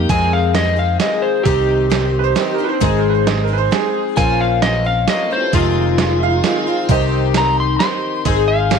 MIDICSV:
0, 0, Header, 1, 8, 480
1, 0, Start_track
1, 0, Key_signature, -4, "minor"
1, 0, Tempo, 453515
1, 105, Time_signature, 3, 2, 24, 8
1, 9303, End_track
2, 0, Start_track
2, 0, Title_t, "Electric slide guitar"
2, 0, Program_c, 0, 29
2, 104, Note_on_c, 0, 80, 109
2, 337, Note_off_c, 0, 80, 0
2, 350, Note_on_c, 0, 77, 90
2, 580, Note_off_c, 0, 77, 0
2, 586, Note_on_c, 0, 75, 83
2, 818, Note_off_c, 0, 75, 0
2, 834, Note_on_c, 0, 77, 77
2, 1062, Note_off_c, 0, 77, 0
2, 1074, Note_on_c, 0, 75, 71
2, 1292, Note_on_c, 0, 72, 87
2, 1302, Note_off_c, 0, 75, 0
2, 1518, Note_on_c, 0, 67, 108
2, 1531, Note_off_c, 0, 72, 0
2, 2930, Note_off_c, 0, 67, 0
2, 4413, Note_on_c, 0, 80, 121
2, 4652, Note_off_c, 0, 80, 0
2, 4664, Note_on_c, 0, 77, 90
2, 4892, Note_on_c, 0, 75, 95
2, 4898, Note_off_c, 0, 77, 0
2, 5131, Note_off_c, 0, 75, 0
2, 5147, Note_on_c, 0, 77, 96
2, 5379, Note_off_c, 0, 77, 0
2, 5386, Note_on_c, 0, 75, 86
2, 5619, Note_off_c, 0, 75, 0
2, 5636, Note_on_c, 0, 72, 82
2, 5864, Note_off_c, 0, 72, 0
2, 5870, Note_on_c, 0, 65, 118
2, 7265, Note_off_c, 0, 65, 0
2, 7805, Note_on_c, 0, 82, 94
2, 8028, Note_off_c, 0, 82, 0
2, 8044, Note_on_c, 0, 84, 103
2, 8236, Note_off_c, 0, 84, 0
2, 8248, Note_on_c, 0, 84, 93
2, 8721, Note_off_c, 0, 84, 0
2, 8973, Note_on_c, 0, 77, 110
2, 9303, Note_off_c, 0, 77, 0
2, 9303, End_track
3, 0, Start_track
3, 0, Title_t, "Upright piano"
3, 0, Program_c, 1, 0
3, 2317, Note_on_c, 1, 71, 65
3, 2345, Note_off_c, 1, 71, 0
3, 2367, Note_on_c, 1, 72, 106
3, 2512, Note_off_c, 1, 72, 0
3, 2533, Note_on_c, 1, 75, 73
3, 2675, Note_off_c, 1, 75, 0
3, 2692, Note_on_c, 1, 70, 86
3, 2795, Note_on_c, 1, 71, 67
3, 2824, Note_off_c, 1, 71, 0
3, 2834, Note_off_c, 1, 70, 0
3, 2844, Note_on_c, 1, 72, 89
3, 2990, Note_off_c, 1, 72, 0
3, 2994, Note_on_c, 1, 75, 72
3, 3145, Note_off_c, 1, 75, 0
3, 3153, Note_on_c, 1, 70, 77
3, 3275, Note_on_c, 1, 71, 64
3, 3304, Note_off_c, 1, 70, 0
3, 3304, Note_off_c, 1, 71, 0
3, 3328, Note_on_c, 1, 72, 94
3, 3468, Note_on_c, 1, 75, 76
3, 3472, Note_off_c, 1, 72, 0
3, 3622, Note_off_c, 1, 75, 0
3, 3637, Note_on_c, 1, 70, 81
3, 3735, Note_on_c, 1, 71, 66
3, 3768, Note_off_c, 1, 71, 0
3, 3785, Note_on_c, 1, 72, 109
3, 3787, Note_off_c, 1, 70, 0
3, 3940, Note_off_c, 1, 72, 0
3, 3951, Note_on_c, 1, 68, 99
3, 4298, Note_off_c, 1, 68, 0
3, 6552, Note_on_c, 1, 76, 64
3, 6582, Note_off_c, 1, 76, 0
3, 6595, Note_on_c, 1, 77, 103
3, 7288, Note_off_c, 1, 77, 0
3, 7312, Note_on_c, 1, 72, 77
3, 7316, Note_on_c, 1, 75, 79
3, 7643, Note_off_c, 1, 72, 0
3, 7660, Note_off_c, 1, 75, 0
3, 9303, End_track
4, 0, Start_track
4, 0, Title_t, "Grand piano"
4, 0, Program_c, 2, 0
4, 97, Note_on_c, 2, 65, 71
4, 108, Note_on_c, 2, 68, 68
4, 118, Note_on_c, 2, 75, 80
4, 408, Note_off_c, 2, 65, 0
4, 414, Note_off_c, 2, 68, 0
4, 419, Note_off_c, 2, 75, 0
4, 584, Note_on_c, 2, 65, 55
4, 594, Note_on_c, 2, 68, 58
4, 602, Note_on_c, 2, 72, 67
4, 892, Note_off_c, 2, 65, 0
4, 897, Note_off_c, 2, 68, 0
4, 901, Note_off_c, 2, 72, 0
4, 1062, Note_on_c, 2, 65, 67
4, 1069, Note_on_c, 2, 68, 57
4, 1076, Note_on_c, 2, 75, 74
4, 1371, Note_off_c, 2, 65, 0
4, 1374, Note_off_c, 2, 68, 0
4, 1378, Note_off_c, 2, 75, 0
4, 1541, Note_on_c, 2, 63, 82
4, 1547, Note_on_c, 2, 67, 75
4, 1557, Note_on_c, 2, 72, 77
4, 1851, Note_off_c, 2, 63, 0
4, 1853, Note_off_c, 2, 67, 0
4, 1858, Note_off_c, 2, 72, 0
4, 2013, Note_on_c, 2, 63, 64
4, 2021, Note_on_c, 2, 67, 57
4, 2030, Note_on_c, 2, 72, 71
4, 2327, Note_off_c, 2, 63, 0
4, 2331, Note_off_c, 2, 67, 0
4, 2335, Note_off_c, 2, 72, 0
4, 2509, Note_on_c, 2, 63, 77
4, 2516, Note_on_c, 2, 67, 67
4, 2522, Note_on_c, 2, 72, 86
4, 2815, Note_off_c, 2, 63, 0
4, 2818, Note_off_c, 2, 67, 0
4, 2821, Note_off_c, 2, 72, 0
4, 2986, Note_on_c, 2, 63, 90
4, 2994, Note_on_c, 2, 68, 85
4, 3005, Note_on_c, 2, 72, 109
4, 3294, Note_off_c, 2, 63, 0
4, 3297, Note_off_c, 2, 68, 0
4, 3303, Note_off_c, 2, 72, 0
4, 3458, Note_on_c, 2, 63, 79
4, 3465, Note_on_c, 2, 68, 64
4, 3471, Note_on_c, 2, 72, 85
4, 3769, Note_off_c, 2, 63, 0
4, 3773, Note_off_c, 2, 68, 0
4, 3776, Note_off_c, 2, 72, 0
4, 3938, Note_on_c, 2, 63, 74
4, 3943, Note_on_c, 2, 68, 77
4, 3955, Note_on_c, 2, 72, 78
4, 4249, Note_off_c, 2, 63, 0
4, 4252, Note_off_c, 2, 68, 0
4, 4258, Note_off_c, 2, 72, 0
4, 4414, Note_on_c, 2, 61, 73
4, 4425, Note_on_c, 2, 70, 66
4, 4436, Note_on_c, 2, 72, 91
4, 4728, Note_off_c, 2, 61, 0
4, 4733, Note_off_c, 2, 70, 0
4, 4738, Note_off_c, 2, 72, 0
4, 4894, Note_on_c, 2, 61, 60
4, 4907, Note_on_c, 2, 70, 55
4, 4915, Note_on_c, 2, 72, 68
4, 5207, Note_off_c, 2, 61, 0
4, 5214, Note_off_c, 2, 70, 0
4, 5218, Note_off_c, 2, 72, 0
4, 5383, Note_on_c, 2, 61, 60
4, 5398, Note_on_c, 2, 70, 61
4, 5403, Note_on_c, 2, 73, 73
4, 5692, Note_off_c, 2, 61, 0
4, 5700, Note_off_c, 2, 70, 0
4, 5702, Note_off_c, 2, 73, 0
4, 5863, Note_on_c, 2, 65, 75
4, 5872, Note_on_c, 2, 68, 71
4, 5883, Note_on_c, 2, 75, 84
4, 6172, Note_off_c, 2, 65, 0
4, 6177, Note_off_c, 2, 68, 0
4, 6182, Note_off_c, 2, 75, 0
4, 6344, Note_on_c, 2, 65, 56
4, 6347, Note_on_c, 2, 68, 52
4, 6360, Note_on_c, 2, 77, 69
4, 6652, Note_off_c, 2, 65, 0
4, 6654, Note_off_c, 2, 68, 0
4, 6660, Note_off_c, 2, 77, 0
4, 6813, Note_on_c, 2, 65, 81
4, 6827, Note_on_c, 2, 68, 75
4, 6831, Note_on_c, 2, 75, 81
4, 7127, Note_off_c, 2, 65, 0
4, 7134, Note_off_c, 2, 68, 0
4, 7136, Note_off_c, 2, 75, 0
4, 7302, Note_on_c, 2, 63, 96
4, 7306, Note_on_c, 2, 67, 81
4, 7316, Note_on_c, 2, 72, 101
4, 7611, Note_off_c, 2, 63, 0
4, 7613, Note_off_c, 2, 67, 0
4, 7618, Note_off_c, 2, 72, 0
4, 7776, Note_on_c, 2, 63, 68
4, 7786, Note_on_c, 2, 67, 63
4, 7795, Note_on_c, 2, 72, 65
4, 8088, Note_off_c, 2, 63, 0
4, 8093, Note_off_c, 2, 67, 0
4, 8097, Note_off_c, 2, 72, 0
4, 8265, Note_on_c, 2, 63, 66
4, 8276, Note_on_c, 2, 67, 61
4, 8280, Note_on_c, 2, 72, 79
4, 8572, Note_off_c, 2, 63, 0
4, 8578, Note_off_c, 2, 67, 0
4, 8579, Note_off_c, 2, 72, 0
4, 8731, Note_on_c, 2, 63, 77
4, 8739, Note_on_c, 2, 68, 69
4, 8748, Note_on_c, 2, 72, 87
4, 9045, Note_off_c, 2, 63, 0
4, 9049, Note_off_c, 2, 68, 0
4, 9053, Note_off_c, 2, 72, 0
4, 9223, Note_on_c, 2, 63, 61
4, 9229, Note_on_c, 2, 68, 64
4, 9239, Note_on_c, 2, 72, 70
4, 9303, Note_off_c, 2, 63, 0
4, 9303, Note_off_c, 2, 68, 0
4, 9303, Note_off_c, 2, 72, 0
4, 9303, End_track
5, 0, Start_track
5, 0, Title_t, "Tonewheel organ"
5, 0, Program_c, 3, 16
5, 5535, Note_on_c, 3, 57, 68
5, 5569, Note_on_c, 3, 59, 63
5, 5597, Note_on_c, 3, 60, 71
5, 5631, Note_on_c, 3, 62, 65
5, 5658, Note_on_c, 3, 64, 62
5, 5682, Note_on_c, 3, 65, 67
5, 5717, Note_on_c, 3, 67, 68
5, 5745, Note_on_c, 3, 69, 71
5, 5758, Note_off_c, 3, 57, 0
5, 5772, Note_on_c, 3, 71, 66
5, 5775, Note_off_c, 3, 59, 0
5, 5789, Note_off_c, 3, 60, 0
5, 5806, Note_off_c, 3, 62, 0
5, 5808, Note_on_c, 3, 72, 66
5, 5819, Note_off_c, 3, 64, 0
5, 5831, Note_off_c, 3, 65, 0
5, 5832, Note_on_c, 3, 74, 64
5, 5849, Note_off_c, 3, 67, 0
5, 5860, Note_on_c, 3, 63, 70
5, 5863, Note_off_c, 3, 69, 0
5, 5864, Note_on_c, 3, 65, 78
5, 5864, Note_on_c, 3, 68, 75
5, 5876, Note_off_c, 3, 71, 0
5, 5894, Note_off_c, 3, 72, 0
5, 5907, Note_off_c, 3, 74, 0
5, 7288, Note_off_c, 3, 63, 0
5, 7290, Note_off_c, 3, 65, 0
5, 7290, Note_off_c, 3, 68, 0
5, 7299, Note_on_c, 3, 67, 73
5, 7307, Note_on_c, 3, 63, 70
5, 7307, Note_on_c, 3, 72, 71
5, 8722, Note_off_c, 3, 63, 0
5, 8723, Note_off_c, 3, 72, 0
5, 8726, Note_off_c, 3, 67, 0
5, 8735, Note_on_c, 3, 63, 77
5, 8735, Note_on_c, 3, 72, 74
5, 8738, Note_on_c, 3, 68, 77
5, 9303, Note_off_c, 3, 63, 0
5, 9303, Note_off_c, 3, 68, 0
5, 9303, Note_off_c, 3, 72, 0
5, 9303, End_track
6, 0, Start_track
6, 0, Title_t, "Twelve-string acoustic guitar"
6, 0, Program_c, 4, 25
6, 0, Note_on_c, 4, 67, 68
6, 96, Note_on_c, 4, 41, 79
6, 102, Note_on_c, 4, 48, 82
6, 106, Note_on_c, 4, 51, 77
6, 108, Note_on_c, 4, 60, 85
6, 109, Note_off_c, 4, 67, 0
6, 110, Note_on_c, 4, 56, 91
6, 113, Note_on_c, 4, 68, 91
6, 557, Note_off_c, 4, 51, 0
6, 570, Note_off_c, 4, 56, 0
6, 570, Note_on_c, 4, 51, 51
6, 580, Note_off_c, 4, 41, 0
6, 583, Note_off_c, 4, 48, 0
6, 583, Note_off_c, 4, 68, 0
6, 583, Note_on_c, 4, 56, 65
6, 588, Note_off_c, 4, 60, 0
6, 592, Note_on_c, 4, 60, 67
6, 596, Note_on_c, 4, 68, 68
6, 791, Note_off_c, 4, 68, 0
6, 797, Note_off_c, 4, 60, 0
6, 804, Note_on_c, 4, 68, 40
6, 806, Note_off_c, 4, 56, 0
6, 810, Note_on_c, 4, 60, 46
6, 817, Note_off_c, 4, 51, 0
6, 818, Note_on_c, 4, 56, 44
6, 830, Note_on_c, 4, 51, 41
6, 1043, Note_off_c, 4, 51, 0
6, 1050, Note_off_c, 4, 56, 0
6, 1052, Note_off_c, 4, 60, 0
6, 1054, Note_off_c, 4, 68, 0
6, 1056, Note_on_c, 4, 51, 54
6, 1063, Note_on_c, 4, 56, 55
6, 1065, Note_on_c, 4, 60, 61
6, 1076, Note_on_c, 4, 68, 58
6, 1535, Note_off_c, 4, 51, 0
6, 1538, Note_on_c, 4, 48, 74
6, 1542, Note_off_c, 4, 60, 0
6, 1544, Note_off_c, 4, 56, 0
6, 1546, Note_on_c, 4, 63, 88
6, 1548, Note_on_c, 4, 51, 84
6, 1549, Note_on_c, 4, 60, 79
6, 1550, Note_off_c, 4, 68, 0
6, 1556, Note_on_c, 4, 67, 77
6, 1996, Note_off_c, 4, 51, 0
6, 2008, Note_on_c, 4, 51, 55
6, 2009, Note_off_c, 4, 60, 0
6, 2013, Note_off_c, 4, 63, 0
6, 2014, Note_off_c, 4, 67, 0
6, 2014, Note_on_c, 4, 60, 54
6, 2017, Note_on_c, 4, 63, 68
6, 2022, Note_off_c, 4, 48, 0
6, 2027, Note_on_c, 4, 67, 61
6, 2476, Note_off_c, 4, 51, 0
6, 2488, Note_on_c, 4, 51, 59
6, 2490, Note_off_c, 4, 63, 0
6, 2495, Note_off_c, 4, 67, 0
6, 2496, Note_off_c, 4, 60, 0
6, 2500, Note_on_c, 4, 60, 59
6, 2502, Note_on_c, 4, 63, 73
6, 2507, Note_on_c, 4, 67, 71
6, 2720, Note_off_c, 4, 67, 0
6, 2733, Note_off_c, 4, 63, 0
6, 2733, Note_on_c, 4, 67, 56
6, 2737, Note_off_c, 4, 51, 0
6, 2743, Note_off_c, 4, 60, 0
6, 2745, Note_on_c, 4, 63, 46
6, 2754, Note_on_c, 4, 60, 46
6, 2968, Note_off_c, 4, 63, 0
6, 2968, Note_on_c, 4, 44, 91
6, 2969, Note_off_c, 4, 60, 0
6, 2972, Note_on_c, 4, 56, 106
6, 2975, Note_on_c, 4, 51, 97
6, 2976, Note_off_c, 4, 67, 0
6, 2980, Note_on_c, 4, 68, 105
6, 2981, Note_on_c, 4, 60, 97
6, 2981, Note_on_c, 4, 63, 106
6, 3442, Note_off_c, 4, 56, 0
6, 3454, Note_off_c, 4, 63, 0
6, 3455, Note_on_c, 4, 56, 68
6, 3457, Note_off_c, 4, 44, 0
6, 3457, Note_off_c, 4, 60, 0
6, 3457, Note_off_c, 4, 68, 0
6, 3460, Note_off_c, 4, 51, 0
6, 3461, Note_on_c, 4, 60, 73
6, 3467, Note_on_c, 4, 63, 65
6, 3470, Note_on_c, 4, 68, 76
6, 3666, Note_off_c, 4, 68, 0
6, 3678, Note_on_c, 4, 68, 57
6, 3680, Note_off_c, 4, 63, 0
6, 3683, Note_off_c, 4, 60, 0
6, 3690, Note_off_c, 4, 56, 0
6, 3693, Note_on_c, 4, 63, 58
6, 3695, Note_on_c, 4, 60, 46
6, 3702, Note_on_c, 4, 56, 44
6, 3914, Note_off_c, 4, 56, 0
6, 3921, Note_off_c, 4, 60, 0
6, 3924, Note_off_c, 4, 63, 0
6, 3927, Note_on_c, 4, 56, 66
6, 3932, Note_off_c, 4, 68, 0
6, 3933, Note_on_c, 4, 60, 63
6, 3937, Note_on_c, 4, 63, 72
6, 3948, Note_on_c, 4, 68, 68
6, 4401, Note_off_c, 4, 56, 0
6, 4403, Note_on_c, 4, 46, 87
6, 4405, Note_on_c, 4, 53, 80
6, 4407, Note_off_c, 4, 60, 0
6, 4411, Note_off_c, 4, 63, 0
6, 4411, Note_on_c, 4, 61, 79
6, 4413, Note_off_c, 4, 68, 0
6, 4415, Note_on_c, 4, 60, 90
6, 4417, Note_on_c, 4, 65, 94
6, 4889, Note_off_c, 4, 53, 0
6, 4893, Note_on_c, 4, 53, 55
6, 4894, Note_off_c, 4, 46, 0
6, 4895, Note_off_c, 4, 61, 0
6, 4906, Note_off_c, 4, 60, 0
6, 4907, Note_on_c, 4, 61, 53
6, 4909, Note_off_c, 4, 65, 0
6, 4911, Note_on_c, 4, 60, 63
6, 4913, Note_on_c, 4, 65, 65
6, 5115, Note_off_c, 4, 65, 0
6, 5128, Note_off_c, 4, 60, 0
6, 5128, Note_on_c, 4, 65, 48
6, 5137, Note_off_c, 4, 61, 0
6, 5139, Note_off_c, 4, 53, 0
6, 5141, Note_on_c, 4, 60, 47
6, 5150, Note_on_c, 4, 61, 43
6, 5371, Note_off_c, 4, 61, 0
6, 5373, Note_off_c, 4, 60, 0
6, 5376, Note_on_c, 4, 53, 57
6, 5377, Note_off_c, 4, 65, 0
6, 5384, Note_on_c, 4, 61, 58
6, 5386, Note_on_c, 4, 60, 64
6, 5396, Note_on_c, 4, 65, 66
6, 5603, Note_off_c, 4, 65, 0
6, 5615, Note_off_c, 4, 60, 0
6, 5616, Note_on_c, 4, 65, 42
6, 5621, Note_off_c, 4, 53, 0
6, 5625, Note_off_c, 4, 61, 0
6, 5628, Note_on_c, 4, 60, 43
6, 5640, Note_on_c, 4, 61, 41
6, 5845, Note_off_c, 4, 60, 0
6, 5850, Note_on_c, 4, 41, 82
6, 5852, Note_on_c, 4, 48, 83
6, 5853, Note_on_c, 4, 51, 81
6, 5855, Note_off_c, 4, 61, 0
6, 5857, Note_off_c, 4, 65, 0
6, 5858, Note_on_c, 4, 60, 84
6, 5860, Note_on_c, 4, 56, 82
6, 5870, Note_on_c, 4, 65, 93
6, 6318, Note_off_c, 4, 51, 0
6, 6330, Note_off_c, 4, 56, 0
6, 6330, Note_on_c, 4, 51, 62
6, 6338, Note_off_c, 4, 41, 0
6, 6339, Note_off_c, 4, 48, 0
6, 6341, Note_off_c, 4, 65, 0
6, 6343, Note_on_c, 4, 56, 68
6, 6348, Note_off_c, 4, 60, 0
6, 6353, Note_on_c, 4, 60, 59
6, 6354, Note_on_c, 4, 65, 56
6, 6802, Note_off_c, 4, 51, 0
6, 6804, Note_off_c, 4, 56, 0
6, 6814, Note_on_c, 4, 51, 64
6, 6816, Note_on_c, 4, 56, 67
6, 6822, Note_off_c, 4, 65, 0
6, 6823, Note_off_c, 4, 60, 0
6, 6827, Note_on_c, 4, 60, 62
6, 6835, Note_on_c, 4, 65, 63
6, 7043, Note_off_c, 4, 65, 0
6, 7053, Note_off_c, 4, 60, 0
6, 7055, Note_on_c, 4, 65, 53
6, 7060, Note_off_c, 4, 51, 0
6, 7061, Note_off_c, 4, 56, 0
6, 7066, Note_on_c, 4, 60, 51
6, 7074, Note_on_c, 4, 56, 47
6, 7079, Note_on_c, 4, 51, 49
6, 7283, Note_off_c, 4, 60, 0
6, 7284, Note_off_c, 4, 51, 0
6, 7290, Note_on_c, 4, 48, 92
6, 7292, Note_off_c, 4, 56, 0
6, 7296, Note_on_c, 4, 60, 96
6, 7297, Note_on_c, 4, 51, 93
6, 7300, Note_off_c, 4, 65, 0
6, 7301, Note_on_c, 4, 63, 91
6, 7311, Note_on_c, 4, 67, 105
6, 7774, Note_off_c, 4, 51, 0
6, 7777, Note_off_c, 4, 48, 0
6, 7787, Note_on_c, 4, 51, 66
6, 7788, Note_off_c, 4, 67, 0
6, 7789, Note_off_c, 4, 60, 0
6, 7793, Note_on_c, 4, 60, 66
6, 7794, Note_off_c, 4, 63, 0
6, 7798, Note_on_c, 4, 63, 64
6, 7802, Note_on_c, 4, 67, 62
6, 8246, Note_off_c, 4, 51, 0
6, 8258, Note_off_c, 4, 63, 0
6, 8258, Note_on_c, 4, 51, 53
6, 8262, Note_off_c, 4, 60, 0
6, 8267, Note_on_c, 4, 60, 57
6, 8268, Note_off_c, 4, 67, 0
6, 8270, Note_on_c, 4, 63, 59
6, 8281, Note_on_c, 4, 67, 59
6, 8727, Note_off_c, 4, 51, 0
6, 8731, Note_on_c, 4, 44, 76
6, 8732, Note_off_c, 4, 63, 0
6, 8737, Note_off_c, 4, 60, 0
6, 8738, Note_on_c, 4, 56, 95
6, 8739, Note_on_c, 4, 51, 79
6, 8740, Note_off_c, 4, 67, 0
6, 8741, Note_on_c, 4, 60, 83
6, 8744, Note_on_c, 4, 63, 84
6, 8745, Note_on_c, 4, 68, 89
6, 9198, Note_off_c, 4, 56, 0
6, 9211, Note_on_c, 4, 56, 69
6, 9216, Note_off_c, 4, 63, 0
6, 9217, Note_off_c, 4, 44, 0
6, 9217, Note_off_c, 4, 60, 0
6, 9221, Note_off_c, 4, 51, 0
6, 9221, Note_off_c, 4, 68, 0
6, 9221, Note_on_c, 4, 60, 70
6, 9228, Note_on_c, 4, 63, 67
6, 9234, Note_on_c, 4, 68, 69
6, 9303, Note_off_c, 4, 56, 0
6, 9303, Note_off_c, 4, 60, 0
6, 9303, Note_off_c, 4, 63, 0
6, 9303, Note_off_c, 4, 68, 0
6, 9303, End_track
7, 0, Start_track
7, 0, Title_t, "Fingered electric bass"
7, 0, Program_c, 5, 33
7, 100, Note_on_c, 5, 41, 85
7, 1019, Note_off_c, 5, 41, 0
7, 1547, Note_on_c, 5, 36, 82
7, 2464, Note_off_c, 5, 36, 0
7, 2981, Note_on_c, 5, 32, 87
7, 3901, Note_off_c, 5, 32, 0
7, 4422, Note_on_c, 5, 34, 89
7, 5341, Note_off_c, 5, 34, 0
7, 5860, Note_on_c, 5, 29, 96
7, 6780, Note_off_c, 5, 29, 0
7, 7295, Note_on_c, 5, 36, 76
7, 8217, Note_off_c, 5, 36, 0
7, 8740, Note_on_c, 5, 32, 87
7, 9303, Note_off_c, 5, 32, 0
7, 9303, End_track
8, 0, Start_track
8, 0, Title_t, "Drums"
8, 99, Note_on_c, 9, 42, 65
8, 100, Note_on_c, 9, 36, 100
8, 205, Note_off_c, 9, 42, 0
8, 206, Note_off_c, 9, 36, 0
8, 578, Note_on_c, 9, 38, 75
8, 578, Note_on_c, 9, 42, 65
8, 684, Note_off_c, 9, 38, 0
8, 684, Note_off_c, 9, 42, 0
8, 1055, Note_on_c, 9, 38, 77
8, 1055, Note_on_c, 9, 42, 69
8, 1161, Note_off_c, 9, 38, 0
8, 1161, Note_off_c, 9, 42, 0
8, 1539, Note_on_c, 9, 42, 72
8, 1541, Note_on_c, 9, 36, 108
8, 1645, Note_off_c, 9, 42, 0
8, 1647, Note_off_c, 9, 36, 0
8, 2028, Note_on_c, 9, 38, 87
8, 2028, Note_on_c, 9, 42, 66
8, 2134, Note_off_c, 9, 38, 0
8, 2134, Note_off_c, 9, 42, 0
8, 2497, Note_on_c, 9, 38, 70
8, 2497, Note_on_c, 9, 42, 66
8, 2602, Note_off_c, 9, 38, 0
8, 2602, Note_off_c, 9, 42, 0
8, 2978, Note_on_c, 9, 42, 68
8, 2979, Note_on_c, 9, 36, 100
8, 3084, Note_off_c, 9, 42, 0
8, 3085, Note_off_c, 9, 36, 0
8, 3461, Note_on_c, 9, 38, 82
8, 3461, Note_on_c, 9, 42, 61
8, 3567, Note_off_c, 9, 38, 0
8, 3567, Note_off_c, 9, 42, 0
8, 3940, Note_on_c, 9, 38, 86
8, 3940, Note_on_c, 9, 42, 57
8, 4046, Note_off_c, 9, 38, 0
8, 4046, Note_off_c, 9, 42, 0
8, 4417, Note_on_c, 9, 36, 95
8, 4418, Note_on_c, 9, 42, 69
8, 4523, Note_off_c, 9, 36, 0
8, 4524, Note_off_c, 9, 42, 0
8, 4892, Note_on_c, 9, 38, 79
8, 4892, Note_on_c, 9, 42, 60
8, 4998, Note_off_c, 9, 38, 0
8, 4998, Note_off_c, 9, 42, 0
8, 5372, Note_on_c, 9, 38, 77
8, 5372, Note_on_c, 9, 42, 68
8, 5478, Note_off_c, 9, 38, 0
8, 5478, Note_off_c, 9, 42, 0
8, 5855, Note_on_c, 9, 42, 69
8, 5856, Note_on_c, 9, 36, 112
8, 5961, Note_off_c, 9, 42, 0
8, 5962, Note_off_c, 9, 36, 0
8, 6332, Note_on_c, 9, 38, 84
8, 6332, Note_on_c, 9, 42, 64
8, 6438, Note_off_c, 9, 38, 0
8, 6438, Note_off_c, 9, 42, 0
8, 6813, Note_on_c, 9, 38, 79
8, 6813, Note_on_c, 9, 42, 61
8, 6919, Note_off_c, 9, 38, 0
8, 6919, Note_off_c, 9, 42, 0
8, 7289, Note_on_c, 9, 42, 68
8, 7295, Note_on_c, 9, 36, 110
8, 7395, Note_off_c, 9, 42, 0
8, 7401, Note_off_c, 9, 36, 0
8, 7773, Note_on_c, 9, 38, 88
8, 7773, Note_on_c, 9, 42, 69
8, 7879, Note_off_c, 9, 38, 0
8, 7879, Note_off_c, 9, 42, 0
8, 8258, Note_on_c, 9, 38, 79
8, 8258, Note_on_c, 9, 42, 62
8, 8363, Note_off_c, 9, 38, 0
8, 8363, Note_off_c, 9, 42, 0
8, 8735, Note_on_c, 9, 42, 69
8, 8738, Note_on_c, 9, 36, 106
8, 8840, Note_off_c, 9, 42, 0
8, 8844, Note_off_c, 9, 36, 0
8, 9220, Note_on_c, 9, 38, 91
8, 9220, Note_on_c, 9, 42, 60
8, 9303, Note_off_c, 9, 38, 0
8, 9303, Note_off_c, 9, 42, 0
8, 9303, End_track
0, 0, End_of_file